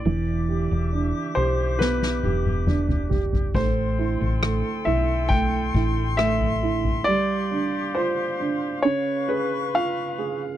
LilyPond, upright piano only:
\new Staff \with { instrumentName = "Upright piano" } { \time 4/4 \key a \minor \tempo 4 = 68 e8 g'8 d'8 g'8 b8 g'8 d'8 g'8 | a8 e'8 a8 e'8 a8 e'8 a8 e'8 | g8 d'8 f'8 d'8 des8 aes'8 f'8 aes'8 | }